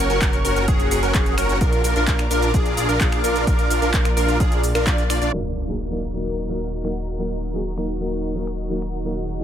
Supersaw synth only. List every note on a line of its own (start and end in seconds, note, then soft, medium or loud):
0.10 0.19 C#4 loud
0.10 0.19 F#4 medium
0.10 0.19 A#4 loud
0.22 0.38 C#4 medium
0.22 0.38 F#4 medium
0.22 0.38 A#4 medium
0.45 0.65 C#4 medium
0.45 0.65 F#4 medium
0.45 0.65 A#4 loud
0.68 0.89 C#4 loud
0.68 0.89 F#4 medium
0.68 0.89 G#4 loud
0.91 1.01 C#4 medium
0.91 1.01 F#4 medium
0.91 1.01 G#4 loud
1.03 1.13 C#4 medium
1.03 1.13 F#4 medium
1.03 1.13 A#4 medium
1.15 1.35 C#4 medium
1.15 1.35 F#4 medium
1.15 1.35 G#4 medium
1.38 1.58 C#4 medium
1.38 1.58 F#4 medium
1.38 1.58 A#4 medium
1.61 1.82 D4 loud
1.61 1.82 F4 medium
1.61 1.82 A#4 loud
1.84 1.94 D4 medium
1.84 1.94 F4 medium
1.84 1.94 A#4 medium
1.96 2.05 D4 medium
1.96 2.05 F4 medium
1.96 2.05 A#4 loud
2.08 2.24 D4 medium
2.08 2.24 F4 medium
2.08 2.24 A#4 medium
2.31 2.51 D4 medium
2.31 2.51 F4 medium
2.31 2.51 A#4 loud
2.54 2.75 D4 loud
2.54 2.75 F4 medium
2.54 2.75 G#4 loud
2.77 2.87 D4 medium
2.77 2.87 F4 medium
2.77 2.87 G#4 loud
2.89 2.99 D4 medium
2.89 2.99 F4 medium
2.89 2.99 A#4 medium
3.01 3.21 D4 medium
3.01 3.21 F4 medium
3.01 3.21 G#4 medium
3.24 3.44 D4 medium
3.24 3.44 F4 medium
3.24 3.44 A#4 loud
3.47 3.68 D4 loud
3.47 3.68 F4 medium
3.47 3.68 A#4 loud
3.70 3.80 D4 medium
3.70 3.80 F4 medium
3.70 3.80 A#4 medium
3.82 3.91 D4 loud
3.82 3.91 F4 medium
3.82 3.91 A#4 loud
3.94 4.10 D4 medium
3.94 4.10 F4 medium
3.94 4.10 A#4 medium
4.17 4.37 D4 medium
4.17 4.37 F4 medium
4.17 4.37 A#4 loud
4.40 4.61 D4 loud
4.40 4.61 F4 medium
4.40 4.61 G#4 loud
4.75 4.85 D4 medium
4.75 4.85 F4 medium
4.75 4.85 A#4 medium
4.87 5.03 D4 medium
4.87 5.03 F4 medium
4.87 5.03 D5 medium
5.10 5.19 D4 medium
5.10 5.19 F4 medium
5.10 5.19 D5 medium
5.22 5.31 D4 medium
5.22 5.31 F4 medium
5.22 5.31 D5 medium